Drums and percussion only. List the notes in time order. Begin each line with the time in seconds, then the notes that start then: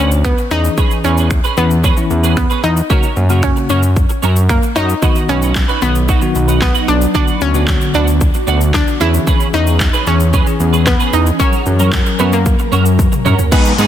0.12 shaker
0.25 finger snap, kick, shaker
0.38 shaker
0.51 shaker
0.65 shaker
0.78 kick, shaker
0.91 shaker
1.04 shaker
1.17 shaker
1.31 finger snap, kick, shaker
1.44 shaker
1.57 shaker
1.71 shaker
1.84 kick, shaker
1.97 shaker
2.10 shaker
2.24 shaker
2.37 finger snap, kick, shaker
2.50 shaker
2.64 shaker
2.77 shaker
2.90 kick, shaker
3.03 shaker
3.16 shaker
3.30 shaker
3.43 finger snap, kick, shaker
3.56 shaker
3.69 shaker
3.83 shaker
3.96 kick, shaker
4.09 shaker
4.23 shaker
4.36 shaker
4.49 finger snap, kick, shaker
4.63 shaker
4.76 shaker
4.89 shaker
5.02 kick, shaker
5.15 shaker
5.29 shaker
5.42 shaker
5.55 kick, snare, clap, shaker
5.69 shaker
5.82 shaker
5.95 shaker
6.09 kick, shaker
6.22 shaker
6.35 shaker
6.48 shaker
6.62 kick, snare, clap, shaker
6.75 shaker
6.88 shaker
7.02 shaker
7.15 kick, shaker
7.28 shaker
7.41 shaker
7.54 shaker
7.68 kick, snare, clap, shaker
7.81 shaker
7.94 shaker
8.08 shaker
8.21 kick, shaker
8.34 shaker
8.48 shaker
8.61 shaker
8.74 kick, snare, clap, shaker
8.87 shaker
9.01 shaker
9.14 shaker
9.27 kick, shaker
9.40 shaker
9.54 shaker
9.67 shaker
9.80 kick, snare, clap, shaker
9.94 shaker
10.07 shaker
10.20 shaker
10.33 kick, shaker
10.47 shaker
10.60 shaker
10.73 shaker
10.87 kick, snare, clap, shaker
11.00 shaker
11.13 shaker
11.26 shaker
11.40 kick, shaker
11.53 shaker
11.66 shaker
11.79 shaker
11.93 kick, snare, clap, shaker
12.06 shaker
12.19 shaker
12.33 shaker
12.46 kick, shaker
12.59 shaker
12.72 shaker
12.86 shaker
12.99 kick, high tom, shaker
13.12 mid tom, shaker
13.26 mid tom, shaker
13.39 floor tom, shaker
13.52 kick, closed hi-hat, crash, shaker
13.65 shaker
13.78 open hi-hat, shaker